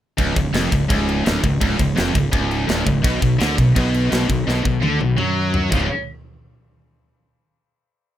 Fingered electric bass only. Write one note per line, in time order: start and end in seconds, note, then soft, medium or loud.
0.19 0.35 C#1 medium
0.37 0.52 C#1 medium
0.53 0.70 F1 medium
0.72 0.89 C#1 medium
0.90 1.23 C#1 loud
1.27 1.43 D1 loud
1.43 1.60 C#1 medium
1.62 1.78 C#1 loud
1.79 1.96 C#1 medium
1.98 2.14 F1 medium
2.15 2.31 C#1 medium
2.33 2.66 C#1 loud
2.69 2.85 D1 loud
2.87 3.03 C#1 medium
3.04 3.21 B1 medium
3.22 3.39 B1 medium
3.41 3.57 D2 loud
3.58 3.75 B1 medium
3.76 4.09 B1 loud
4.12 4.28 B1 loud
4.30 4.46 B1 medium
4.48 4.64 B1 medium
4.65 4.82 B1 medium
4.83 4.99 D2 loud
5.01 5.17 B1 medium
5.18 5.68 F#2 loud
5.72 5.89 C#1 medium